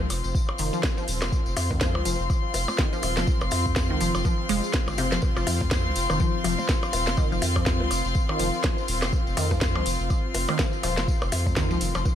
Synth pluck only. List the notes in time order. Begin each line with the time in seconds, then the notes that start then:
0.59 D#3
0.73 F3
0.97 F3
1.71 D#3
1.81 F3
2.05 F3
2.79 D#3
2.93 F3
3.17 F3
3.90 D#3
4.01 F3
4.25 F3
4.49 G#3
4.98 C3
5.12 F3
5.37 F3
6.10 D#3
6.20 F3
6.44 F3
7.18 D#3
7.32 F3
7.56 F3
8.29 D#3
8.39 F3
8.64 F3
9.37 D#3
9.51 F3
9.76 F3
10.49 D#3
10.59 F3
10.83 F3
11.57 D#3
11.71 F3
11.95 F3